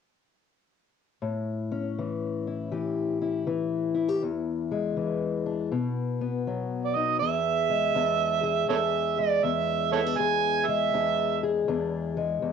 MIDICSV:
0, 0, Header, 1, 3, 480
1, 0, Start_track
1, 0, Tempo, 745342
1, 794, Time_signature, 4, 2, 24, 8
1, 8065, End_track
2, 0, Start_track
2, 0, Title_t, "Harmonica"
2, 0, Program_c, 0, 22
2, 4408, Note_on_c, 0, 74, 57
2, 4477, Note_on_c, 0, 75, 71
2, 4487, Note_off_c, 0, 74, 0
2, 4629, Note_off_c, 0, 75, 0
2, 4633, Note_on_c, 0, 76, 96
2, 5570, Note_off_c, 0, 76, 0
2, 5597, Note_on_c, 0, 69, 62
2, 5597, Note_on_c, 0, 73, 62
2, 5597, Note_on_c, 0, 76, 88
2, 5636, Note_off_c, 0, 73, 0
2, 5647, Note_off_c, 0, 69, 0
2, 5921, Note_on_c, 0, 74, 80
2, 5930, Note_off_c, 0, 76, 0
2, 6077, Note_on_c, 0, 76, 89
2, 6087, Note_off_c, 0, 74, 0
2, 6389, Note_off_c, 0, 76, 0
2, 6392, Note_on_c, 0, 69, 65
2, 6392, Note_on_c, 0, 73, 65
2, 6392, Note_on_c, 0, 76, 93
2, 6442, Note_off_c, 0, 69, 0
2, 6446, Note_off_c, 0, 73, 0
2, 6555, Note_on_c, 0, 80, 105
2, 6565, Note_off_c, 0, 76, 0
2, 6871, Note_on_c, 0, 76, 89
2, 6880, Note_off_c, 0, 80, 0
2, 7350, Note_off_c, 0, 76, 0
2, 8065, End_track
3, 0, Start_track
3, 0, Title_t, "Steel-string acoustic guitar"
3, 0, Program_c, 1, 25
3, 785, Note_on_c, 1, 45, 61
3, 1106, Note_on_c, 1, 61, 52
3, 1279, Note_on_c, 1, 52, 55
3, 1593, Note_on_c, 1, 64, 50
3, 1742, Note_off_c, 1, 52, 0
3, 1749, Note_on_c, 1, 52, 55
3, 1753, Note_on_c, 1, 67, 57
3, 2064, Note_off_c, 1, 64, 0
3, 2072, Note_on_c, 1, 64, 50
3, 2226, Note_off_c, 1, 52, 0
3, 2234, Note_on_c, 1, 52, 57
3, 2533, Note_off_c, 1, 64, 0
3, 2538, Note_off_c, 1, 67, 0
3, 2541, Note_on_c, 1, 64, 56
3, 2630, Note_off_c, 1, 64, 0
3, 2630, Note_on_c, 1, 67, 44
3, 2692, Note_off_c, 1, 45, 0
3, 2697, Note_off_c, 1, 61, 0
3, 2716, Note_off_c, 1, 67, 0
3, 2721, Note_on_c, 1, 40, 65
3, 3035, Note_on_c, 1, 56, 54
3, 3191, Note_off_c, 1, 52, 0
3, 3198, Note_on_c, 1, 52, 57
3, 3517, Note_on_c, 1, 62, 51
3, 3662, Note_off_c, 1, 62, 0
3, 3679, Note_off_c, 1, 52, 0
3, 3680, Note_off_c, 1, 40, 0
3, 3682, Note_off_c, 1, 56, 0
3, 3682, Note_on_c, 1, 47, 72
3, 4000, Note_on_c, 1, 59, 51
3, 4167, Note_on_c, 1, 54, 54
3, 4482, Note_on_c, 1, 63, 53
3, 4623, Note_off_c, 1, 54, 0
3, 4624, Note_off_c, 1, 59, 0
3, 4624, Note_off_c, 1, 63, 0
3, 4641, Note_off_c, 1, 47, 0
3, 4644, Note_on_c, 1, 40, 68
3, 4647, Note_on_c, 1, 68, 60
3, 4956, Note_on_c, 1, 56, 54
3, 5116, Note_off_c, 1, 40, 0
3, 5119, Note_on_c, 1, 40, 70
3, 5123, Note_on_c, 1, 62, 59
3, 5427, Note_off_c, 1, 68, 0
3, 5429, Note_on_c, 1, 68, 61
3, 5592, Note_off_c, 1, 40, 0
3, 5595, Note_on_c, 1, 40, 73
3, 5598, Note_off_c, 1, 62, 0
3, 5601, Note_on_c, 1, 62, 61
3, 5907, Note_off_c, 1, 56, 0
3, 5915, Note_on_c, 1, 56, 56
3, 6068, Note_off_c, 1, 40, 0
3, 6076, Note_on_c, 1, 40, 70
3, 6384, Note_off_c, 1, 62, 0
3, 6386, Note_on_c, 1, 59, 54
3, 6481, Note_off_c, 1, 59, 0
3, 6481, Note_on_c, 1, 62, 49
3, 6538, Note_off_c, 1, 68, 0
3, 6555, Note_off_c, 1, 40, 0
3, 6562, Note_off_c, 1, 62, 0
3, 6563, Note_on_c, 1, 40, 73
3, 6565, Note_on_c, 1, 68, 61
3, 6872, Note_off_c, 1, 56, 0
3, 6880, Note_on_c, 1, 56, 58
3, 7038, Note_off_c, 1, 40, 0
3, 7046, Note_on_c, 1, 40, 73
3, 7049, Note_on_c, 1, 62, 61
3, 7352, Note_off_c, 1, 68, 0
3, 7362, Note_on_c, 1, 68, 62
3, 7515, Note_off_c, 1, 40, 0
3, 7519, Note_off_c, 1, 62, 0
3, 7523, Note_on_c, 1, 40, 76
3, 7527, Note_on_c, 1, 62, 58
3, 7828, Note_off_c, 1, 56, 0
3, 7836, Note_on_c, 1, 56, 55
3, 7991, Note_off_c, 1, 40, 0
3, 7999, Note_on_c, 1, 40, 68
3, 8065, Note_off_c, 1, 40, 0
3, 8065, Note_off_c, 1, 56, 0
3, 8065, Note_off_c, 1, 62, 0
3, 8065, Note_off_c, 1, 68, 0
3, 8065, End_track
0, 0, End_of_file